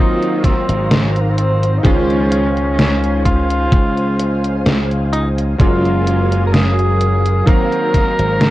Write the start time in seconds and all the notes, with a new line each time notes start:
Already playing: D#3 F#3 A#3 C4 D#4 C5 F5 A#5
0.00 F4
0.23 closed hi-hat
0.44 C4, kick, snare, closed hi-hat
0.69 G#1, closed hi-hat
0.91 snare, closed hi-hat
1.02 C#4
1.12 C4, closed hi-hat
1.21 A#3
1.30 C4
1.38 C4, closed hi-hat
1.63 closed hi-hat
1.78 D#4
1.83 C#2 D#3 G#3 C#4 F4 C5 F5 G#5, kick, closed hi-hat
2.10 closed hi-hat
2.32 closed hi-hat
2.57 closed hi-hat
2.79 snare, closed hi-hat
3.04 closed hi-hat
3.25 F4, kick, closed hi-hat
3.50 closed hi-hat
3.72 C#2, kick, closed hi-hat
3.97 closed hi-hat
4.20 closed hi-hat
4.44 closed hi-hat
4.66 C#2, snare, closed hi-hat
4.91 closed hi-hat
5.12 D#4, closed hi-hat
5.38 closed hi-hat
5.58 F#1 F#3 G#3 A#3 C#4 F4 A#4 F5 G#5, kick, closed hi-hat
5.85 closed hi-hat
6.07 closed hi-hat
6.32 closed hi-hat
6.47 A#4
6.53 G#4, snare, closed hi-hat
6.79 closed hi-hat
7.01 closed hi-hat
7.26 closed hi-hat
7.46 D#3 F#3 A#3 C4 A#4 C5 F5 A#5, kick, closed hi-hat
7.72 closed hi-hat
7.94 kick, snare, closed hi-hat
8.19 G#1, closed hi-hat
8.41 snare, closed hi-hat